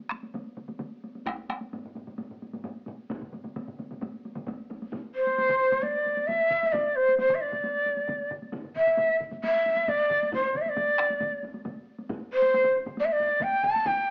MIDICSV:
0, 0, Header, 1, 3, 480
1, 0, Start_track
1, 0, Tempo, 456621
1, 1327, Time_signature, 4, 2, 24, 8
1, 7554, Tempo, 444774
1, 15020, End_track
2, 0, Start_track
2, 0, Title_t, "Shakuhachi"
2, 0, Program_c, 0, 77
2, 5415, Note_on_c, 0, 72, 68
2, 6120, Note_on_c, 0, 74, 74
2, 6135, Note_off_c, 0, 72, 0
2, 6590, Note_on_c, 0, 76, 81
2, 6606, Note_off_c, 0, 74, 0
2, 7002, Note_off_c, 0, 76, 0
2, 7002, Note_on_c, 0, 76, 62
2, 7064, Note_on_c, 0, 74, 75
2, 7080, Note_off_c, 0, 76, 0
2, 7310, Note_on_c, 0, 72, 67
2, 7325, Note_off_c, 0, 74, 0
2, 7545, Note_off_c, 0, 72, 0
2, 7551, Note_on_c, 0, 72, 69
2, 7724, Note_on_c, 0, 76, 49
2, 7740, Note_off_c, 0, 72, 0
2, 7794, Note_on_c, 0, 74, 77
2, 7811, Note_off_c, 0, 76, 0
2, 8766, Note_off_c, 0, 74, 0
2, 9258, Note_on_c, 0, 76, 83
2, 9704, Note_off_c, 0, 76, 0
2, 9988, Note_on_c, 0, 76, 80
2, 10467, Note_on_c, 0, 74, 82
2, 10483, Note_off_c, 0, 76, 0
2, 10943, Note_off_c, 0, 74, 0
2, 10954, Note_on_c, 0, 72, 75
2, 11201, Note_on_c, 0, 74, 71
2, 11217, Note_off_c, 0, 72, 0
2, 11253, Note_on_c, 0, 76, 56
2, 11269, Note_off_c, 0, 74, 0
2, 11335, Note_on_c, 0, 74, 72
2, 11351, Note_off_c, 0, 76, 0
2, 12150, Note_off_c, 0, 74, 0
2, 13106, Note_on_c, 0, 72, 87
2, 13543, Note_off_c, 0, 72, 0
2, 13824, Note_on_c, 0, 74, 73
2, 13878, Note_on_c, 0, 76, 59
2, 13894, Note_off_c, 0, 74, 0
2, 13958, Note_on_c, 0, 74, 77
2, 13974, Note_off_c, 0, 76, 0
2, 14287, Note_on_c, 0, 79, 86
2, 14304, Note_off_c, 0, 74, 0
2, 14518, Note_on_c, 0, 81, 85
2, 14534, Note_off_c, 0, 79, 0
2, 14763, Note_on_c, 0, 79, 85
2, 14780, Note_off_c, 0, 81, 0
2, 15020, Note_off_c, 0, 79, 0
2, 15020, End_track
3, 0, Start_track
3, 0, Title_t, "Taiko and cinematic ensemble drums"
3, 111, Note_on_c, 9, 37, 70
3, 124, Note_on_c, 9, 48, 44
3, 216, Note_off_c, 9, 37, 0
3, 229, Note_off_c, 9, 48, 0
3, 242, Note_on_c, 9, 48, 42
3, 347, Note_off_c, 9, 48, 0
3, 358, Note_on_c, 9, 47, 87
3, 371, Note_on_c, 9, 48, 59
3, 463, Note_off_c, 9, 47, 0
3, 476, Note_off_c, 9, 48, 0
3, 598, Note_on_c, 9, 47, 75
3, 605, Note_on_c, 9, 48, 44
3, 704, Note_off_c, 9, 47, 0
3, 710, Note_off_c, 9, 48, 0
3, 715, Note_on_c, 9, 47, 67
3, 722, Note_on_c, 9, 48, 52
3, 820, Note_off_c, 9, 47, 0
3, 828, Note_off_c, 9, 48, 0
3, 832, Note_on_c, 9, 47, 92
3, 832, Note_on_c, 9, 48, 61
3, 937, Note_off_c, 9, 47, 0
3, 937, Note_off_c, 9, 48, 0
3, 1090, Note_on_c, 9, 48, 49
3, 1195, Note_off_c, 9, 48, 0
3, 1210, Note_on_c, 9, 48, 50
3, 1315, Note_off_c, 9, 48, 0
3, 1320, Note_on_c, 9, 41, 93
3, 1328, Note_on_c, 9, 48, 63
3, 1334, Note_on_c, 9, 37, 70
3, 1426, Note_off_c, 9, 41, 0
3, 1433, Note_off_c, 9, 48, 0
3, 1439, Note_off_c, 9, 37, 0
3, 1567, Note_on_c, 9, 48, 52
3, 1573, Note_on_c, 9, 37, 68
3, 1672, Note_off_c, 9, 48, 0
3, 1678, Note_off_c, 9, 37, 0
3, 1690, Note_on_c, 9, 48, 48
3, 1795, Note_off_c, 9, 48, 0
3, 1819, Note_on_c, 9, 45, 69
3, 1819, Note_on_c, 9, 48, 63
3, 1924, Note_off_c, 9, 48, 0
3, 1925, Note_off_c, 9, 45, 0
3, 1946, Note_on_c, 9, 45, 64
3, 2051, Note_off_c, 9, 45, 0
3, 2052, Note_on_c, 9, 48, 48
3, 2058, Note_on_c, 9, 45, 65
3, 2157, Note_off_c, 9, 48, 0
3, 2163, Note_off_c, 9, 45, 0
3, 2177, Note_on_c, 9, 48, 46
3, 2179, Note_on_c, 9, 45, 64
3, 2282, Note_off_c, 9, 48, 0
3, 2284, Note_off_c, 9, 45, 0
3, 2290, Note_on_c, 9, 48, 60
3, 2304, Note_on_c, 9, 45, 66
3, 2396, Note_off_c, 9, 48, 0
3, 2409, Note_off_c, 9, 45, 0
3, 2424, Note_on_c, 9, 45, 66
3, 2529, Note_off_c, 9, 45, 0
3, 2545, Note_on_c, 9, 45, 62
3, 2545, Note_on_c, 9, 48, 48
3, 2651, Note_off_c, 9, 45, 0
3, 2651, Note_off_c, 9, 48, 0
3, 2660, Note_on_c, 9, 45, 67
3, 2663, Note_on_c, 9, 48, 55
3, 2765, Note_off_c, 9, 45, 0
3, 2769, Note_off_c, 9, 48, 0
3, 2773, Note_on_c, 9, 45, 88
3, 2775, Note_on_c, 9, 48, 63
3, 2879, Note_off_c, 9, 45, 0
3, 2880, Note_off_c, 9, 48, 0
3, 3009, Note_on_c, 9, 48, 54
3, 3019, Note_on_c, 9, 45, 90
3, 3114, Note_off_c, 9, 48, 0
3, 3124, Note_off_c, 9, 45, 0
3, 3252, Note_on_c, 9, 45, 69
3, 3257, Note_on_c, 9, 48, 70
3, 3262, Note_on_c, 9, 41, 87
3, 3263, Note_on_c, 9, 47, 65
3, 3357, Note_off_c, 9, 45, 0
3, 3363, Note_off_c, 9, 48, 0
3, 3367, Note_off_c, 9, 41, 0
3, 3369, Note_off_c, 9, 47, 0
3, 3380, Note_on_c, 9, 47, 67
3, 3384, Note_on_c, 9, 45, 65
3, 3485, Note_off_c, 9, 47, 0
3, 3489, Note_off_c, 9, 45, 0
3, 3498, Note_on_c, 9, 47, 66
3, 3508, Note_on_c, 9, 45, 66
3, 3511, Note_on_c, 9, 48, 52
3, 3603, Note_off_c, 9, 47, 0
3, 3613, Note_off_c, 9, 45, 0
3, 3616, Note_off_c, 9, 48, 0
3, 3616, Note_on_c, 9, 47, 66
3, 3623, Note_on_c, 9, 48, 50
3, 3631, Note_on_c, 9, 45, 62
3, 3721, Note_off_c, 9, 47, 0
3, 3728, Note_off_c, 9, 48, 0
3, 3736, Note_off_c, 9, 45, 0
3, 3741, Note_on_c, 9, 47, 69
3, 3743, Note_on_c, 9, 48, 70
3, 3748, Note_on_c, 9, 45, 68
3, 3846, Note_off_c, 9, 47, 0
3, 3849, Note_off_c, 9, 48, 0
3, 3853, Note_off_c, 9, 45, 0
3, 3865, Note_on_c, 9, 47, 64
3, 3871, Note_on_c, 9, 45, 65
3, 3970, Note_off_c, 9, 47, 0
3, 3976, Note_off_c, 9, 45, 0
3, 3980, Note_on_c, 9, 47, 65
3, 3989, Note_on_c, 9, 48, 53
3, 3994, Note_on_c, 9, 45, 67
3, 4086, Note_off_c, 9, 47, 0
3, 4094, Note_off_c, 9, 48, 0
3, 4099, Note_off_c, 9, 45, 0
3, 4109, Note_on_c, 9, 45, 64
3, 4109, Note_on_c, 9, 48, 52
3, 4117, Note_on_c, 9, 47, 64
3, 4214, Note_off_c, 9, 45, 0
3, 4214, Note_off_c, 9, 48, 0
3, 4219, Note_off_c, 9, 47, 0
3, 4219, Note_on_c, 9, 47, 86
3, 4231, Note_on_c, 9, 48, 74
3, 4232, Note_on_c, 9, 45, 83
3, 4324, Note_off_c, 9, 47, 0
3, 4336, Note_off_c, 9, 48, 0
3, 4337, Note_off_c, 9, 45, 0
3, 4470, Note_on_c, 9, 48, 52
3, 4575, Note_off_c, 9, 48, 0
3, 4577, Note_on_c, 9, 47, 88
3, 4586, Note_on_c, 9, 45, 86
3, 4591, Note_on_c, 9, 48, 58
3, 4682, Note_off_c, 9, 47, 0
3, 4691, Note_off_c, 9, 45, 0
3, 4695, Note_on_c, 9, 47, 89
3, 4696, Note_off_c, 9, 48, 0
3, 4698, Note_on_c, 9, 41, 65
3, 4703, Note_on_c, 9, 45, 89
3, 4713, Note_on_c, 9, 48, 73
3, 4800, Note_off_c, 9, 47, 0
3, 4804, Note_off_c, 9, 41, 0
3, 4808, Note_off_c, 9, 45, 0
3, 4818, Note_off_c, 9, 48, 0
3, 4940, Note_on_c, 9, 41, 68
3, 4951, Note_on_c, 9, 48, 59
3, 5045, Note_off_c, 9, 41, 0
3, 5056, Note_off_c, 9, 48, 0
3, 5068, Note_on_c, 9, 48, 56
3, 5173, Note_off_c, 9, 48, 0
3, 5174, Note_on_c, 9, 41, 82
3, 5178, Note_on_c, 9, 47, 80
3, 5183, Note_on_c, 9, 45, 79
3, 5184, Note_on_c, 9, 48, 59
3, 5279, Note_off_c, 9, 41, 0
3, 5283, Note_off_c, 9, 47, 0
3, 5288, Note_off_c, 9, 45, 0
3, 5289, Note_off_c, 9, 48, 0
3, 5539, Note_on_c, 9, 48, 47
3, 5644, Note_off_c, 9, 48, 0
3, 5659, Note_on_c, 9, 48, 60
3, 5764, Note_off_c, 9, 48, 0
3, 5771, Note_on_c, 9, 47, 83
3, 5774, Note_on_c, 9, 45, 84
3, 5876, Note_off_c, 9, 47, 0
3, 5879, Note_off_c, 9, 45, 0
3, 5894, Note_on_c, 9, 41, 61
3, 6000, Note_off_c, 9, 41, 0
3, 6009, Note_on_c, 9, 45, 76
3, 6012, Note_on_c, 9, 47, 80
3, 6012, Note_on_c, 9, 48, 51
3, 6114, Note_off_c, 9, 45, 0
3, 6117, Note_off_c, 9, 47, 0
3, 6117, Note_off_c, 9, 48, 0
3, 6126, Note_on_c, 9, 48, 61
3, 6231, Note_off_c, 9, 48, 0
3, 6365, Note_on_c, 9, 41, 62
3, 6373, Note_on_c, 9, 48, 43
3, 6470, Note_off_c, 9, 41, 0
3, 6478, Note_off_c, 9, 48, 0
3, 6485, Note_on_c, 9, 48, 52
3, 6590, Note_off_c, 9, 48, 0
3, 6602, Note_on_c, 9, 45, 78
3, 6608, Note_on_c, 9, 48, 63
3, 6610, Note_on_c, 9, 47, 83
3, 6708, Note_off_c, 9, 45, 0
3, 6713, Note_off_c, 9, 48, 0
3, 6715, Note_off_c, 9, 47, 0
3, 6837, Note_on_c, 9, 47, 80
3, 6841, Note_on_c, 9, 45, 81
3, 6942, Note_off_c, 9, 47, 0
3, 6946, Note_off_c, 9, 45, 0
3, 6968, Note_on_c, 9, 48, 50
3, 7070, Note_on_c, 9, 45, 84
3, 7073, Note_off_c, 9, 48, 0
3, 7076, Note_on_c, 9, 47, 81
3, 7079, Note_on_c, 9, 41, 92
3, 7089, Note_on_c, 9, 48, 70
3, 7175, Note_off_c, 9, 45, 0
3, 7181, Note_off_c, 9, 47, 0
3, 7184, Note_off_c, 9, 41, 0
3, 7194, Note_off_c, 9, 48, 0
3, 7445, Note_on_c, 9, 48, 45
3, 7550, Note_off_c, 9, 48, 0
3, 7552, Note_on_c, 9, 48, 63
3, 7660, Note_off_c, 9, 48, 0
3, 7668, Note_on_c, 9, 45, 78
3, 7669, Note_on_c, 9, 47, 85
3, 7776, Note_off_c, 9, 45, 0
3, 7777, Note_off_c, 9, 47, 0
3, 7793, Note_on_c, 9, 41, 63
3, 7901, Note_off_c, 9, 41, 0
3, 7911, Note_on_c, 9, 45, 81
3, 7919, Note_on_c, 9, 47, 81
3, 7921, Note_on_c, 9, 48, 50
3, 8019, Note_off_c, 9, 45, 0
3, 8027, Note_off_c, 9, 47, 0
3, 8029, Note_off_c, 9, 48, 0
3, 8041, Note_on_c, 9, 48, 59
3, 8149, Note_off_c, 9, 48, 0
3, 8277, Note_on_c, 9, 41, 62
3, 8281, Note_on_c, 9, 48, 42
3, 8385, Note_off_c, 9, 41, 0
3, 8389, Note_off_c, 9, 48, 0
3, 8398, Note_on_c, 9, 48, 47
3, 8506, Note_off_c, 9, 48, 0
3, 8517, Note_on_c, 9, 45, 82
3, 8526, Note_on_c, 9, 48, 60
3, 8529, Note_on_c, 9, 47, 82
3, 8624, Note_off_c, 9, 45, 0
3, 8634, Note_off_c, 9, 48, 0
3, 8637, Note_off_c, 9, 47, 0
3, 8767, Note_on_c, 9, 45, 86
3, 8769, Note_on_c, 9, 47, 80
3, 8875, Note_off_c, 9, 45, 0
3, 8877, Note_off_c, 9, 47, 0
3, 8889, Note_on_c, 9, 48, 46
3, 8997, Note_off_c, 9, 48, 0
3, 8998, Note_on_c, 9, 48, 60
3, 9003, Note_on_c, 9, 41, 90
3, 9007, Note_on_c, 9, 45, 59
3, 9018, Note_on_c, 9, 47, 61
3, 9106, Note_off_c, 9, 48, 0
3, 9111, Note_off_c, 9, 41, 0
3, 9115, Note_off_c, 9, 45, 0
3, 9126, Note_off_c, 9, 47, 0
3, 9129, Note_on_c, 9, 47, 57
3, 9133, Note_on_c, 9, 45, 59
3, 9237, Note_off_c, 9, 47, 0
3, 9241, Note_off_c, 9, 45, 0
3, 9245, Note_on_c, 9, 45, 63
3, 9252, Note_on_c, 9, 47, 59
3, 9353, Note_off_c, 9, 45, 0
3, 9360, Note_off_c, 9, 47, 0
3, 9368, Note_on_c, 9, 45, 62
3, 9370, Note_on_c, 9, 47, 63
3, 9475, Note_off_c, 9, 45, 0
3, 9478, Note_off_c, 9, 47, 0
3, 9482, Note_on_c, 9, 45, 84
3, 9482, Note_on_c, 9, 48, 58
3, 9490, Note_on_c, 9, 47, 86
3, 9590, Note_off_c, 9, 45, 0
3, 9590, Note_off_c, 9, 48, 0
3, 9598, Note_off_c, 9, 47, 0
3, 9726, Note_on_c, 9, 45, 61
3, 9729, Note_on_c, 9, 41, 62
3, 9739, Note_on_c, 9, 47, 60
3, 9834, Note_off_c, 9, 45, 0
3, 9837, Note_off_c, 9, 41, 0
3, 9847, Note_off_c, 9, 47, 0
3, 9850, Note_on_c, 9, 48, 51
3, 9852, Note_on_c, 9, 45, 58
3, 9856, Note_on_c, 9, 47, 63
3, 9958, Note_off_c, 9, 48, 0
3, 9960, Note_off_c, 9, 45, 0
3, 9964, Note_off_c, 9, 47, 0
3, 9980, Note_on_c, 9, 48, 63
3, 10088, Note_off_c, 9, 48, 0
3, 10218, Note_on_c, 9, 41, 67
3, 10222, Note_on_c, 9, 48, 47
3, 10326, Note_off_c, 9, 41, 0
3, 10330, Note_off_c, 9, 48, 0
3, 10335, Note_on_c, 9, 48, 53
3, 10443, Note_off_c, 9, 48, 0
3, 10446, Note_on_c, 9, 45, 82
3, 10461, Note_on_c, 9, 47, 84
3, 10461, Note_on_c, 9, 48, 63
3, 10554, Note_off_c, 9, 45, 0
3, 10569, Note_off_c, 9, 47, 0
3, 10569, Note_off_c, 9, 48, 0
3, 10692, Note_on_c, 9, 45, 84
3, 10705, Note_on_c, 9, 47, 83
3, 10800, Note_off_c, 9, 45, 0
3, 10813, Note_off_c, 9, 47, 0
3, 10835, Note_on_c, 9, 48, 53
3, 10929, Note_on_c, 9, 45, 88
3, 10937, Note_on_c, 9, 41, 100
3, 10943, Note_off_c, 9, 48, 0
3, 10947, Note_on_c, 9, 47, 84
3, 10950, Note_on_c, 9, 48, 66
3, 11037, Note_off_c, 9, 45, 0
3, 11045, Note_off_c, 9, 41, 0
3, 11055, Note_off_c, 9, 47, 0
3, 11058, Note_off_c, 9, 48, 0
3, 11176, Note_on_c, 9, 45, 84
3, 11183, Note_on_c, 9, 47, 84
3, 11284, Note_off_c, 9, 45, 0
3, 11291, Note_off_c, 9, 47, 0
3, 11301, Note_on_c, 9, 48, 49
3, 11409, Note_off_c, 9, 48, 0
3, 11416, Note_on_c, 9, 45, 88
3, 11418, Note_on_c, 9, 47, 88
3, 11419, Note_on_c, 9, 48, 68
3, 11524, Note_off_c, 9, 45, 0
3, 11526, Note_off_c, 9, 47, 0
3, 11527, Note_off_c, 9, 48, 0
3, 11652, Note_on_c, 9, 37, 69
3, 11657, Note_off_c, 9, 37, 0
3, 11657, Note_on_c, 9, 37, 68
3, 11661, Note_on_c, 9, 41, 68
3, 11765, Note_off_c, 9, 37, 0
3, 11769, Note_off_c, 9, 41, 0
3, 11780, Note_on_c, 9, 48, 55
3, 11888, Note_off_c, 9, 48, 0
3, 11891, Note_on_c, 9, 48, 68
3, 11894, Note_on_c, 9, 45, 83
3, 11903, Note_on_c, 9, 47, 86
3, 11999, Note_off_c, 9, 48, 0
3, 12002, Note_off_c, 9, 45, 0
3, 12011, Note_off_c, 9, 47, 0
3, 12131, Note_on_c, 9, 48, 47
3, 12144, Note_on_c, 9, 41, 67
3, 12239, Note_off_c, 9, 48, 0
3, 12252, Note_off_c, 9, 41, 0
3, 12253, Note_on_c, 9, 48, 57
3, 12361, Note_off_c, 9, 48, 0
3, 12371, Note_on_c, 9, 48, 68
3, 12372, Note_on_c, 9, 47, 85
3, 12380, Note_on_c, 9, 45, 86
3, 12479, Note_off_c, 9, 48, 0
3, 12480, Note_off_c, 9, 47, 0
3, 12488, Note_off_c, 9, 45, 0
3, 12732, Note_on_c, 9, 48, 54
3, 12840, Note_off_c, 9, 48, 0
3, 12849, Note_on_c, 9, 47, 85
3, 12850, Note_on_c, 9, 48, 70
3, 12851, Note_on_c, 9, 41, 96
3, 12854, Note_on_c, 9, 45, 95
3, 12957, Note_off_c, 9, 47, 0
3, 12958, Note_off_c, 9, 48, 0
3, 12959, Note_off_c, 9, 41, 0
3, 12962, Note_off_c, 9, 45, 0
3, 13200, Note_on_c, 9, 48, 52
3, 13308, Note_off_c, 9, 48, 0
3, 13330, Note_on_c, 9, 48, 66
3, 13437, Note_on_c, 9, 47, 88
3, 13438, Note_off_c, 9, 48, 0
3, 13445, Note_on_c, 9, 45, 82
3, 13545, Note_off_c, 9, 47, 0
3, 13552, Note_off_c, 9, 45, 0
3, 13567, Note_on_c, 9, 41, 65
3, 13675, Note_off_c, 9, 41, 0
3, 13678, Note_on_c, 9, 47, 86
3, 13678, Note_on_c, 9, 48, 52
3, 13687, Note_on_c, 9, 45, 88
3, 13785, Note_off_c, 9, 47, 0
3, 13786, Note_off_c, 9, 48, 0
3, 13795, Note_off_c, 9, 45, 0
3, 13795, Note_on_c, 9, 48, 65
3, 13903, Note_off_c, 9, 48, 0
3, 14039, Note_on_c, 9, 48, 45
3, 14044, Note_on_c, 9, 41, 66
3, 14146, Note_off_c, 9, 48, 0
3, 14152, Note_off_c, 9, 41, 0
3, 14262, Note_on_c, 9, 47, 90
3, 14274, Note_on_c, 9, 48, 65
3, 14279, Note_on_c, 9, 45, 90
3, 14370, Note_off_c, 9, 47, 0
3, 14382, Note_off_c, 9, 48, 0
3, 14387, Note_off_c, 9, 45, 0
3, 14510, Note_on_c, 9, 47, 81
3, 14518, Note_on_c, 9, 45, 92
3, 14618, Note_off_c, 9, 47, 0
3, 14626, Note_off_c, 9, 45, 0
3, 14644, Note_on_c, 9, 48, 49
3, 14749, Note_on_c, 9, 41, 97
3, 14750, Note_on_c, 9, 45, 95
3, 14750, Note_on_c, 9, 47, 89
3, 14752, Note_off_c, 9, 48, 0
3, 14755, Note_on_c, 9, 48, 61
3, 14857, Note_off_c, 9, 41, 0
3, 14858, Note_off_c, 9, 45, 0
3, 14858, Note_off_c, 9, 47, 0
3, 14863, Note_off_c, 9, 48, 0
3, 15020, End_track
0, 0, End_of_file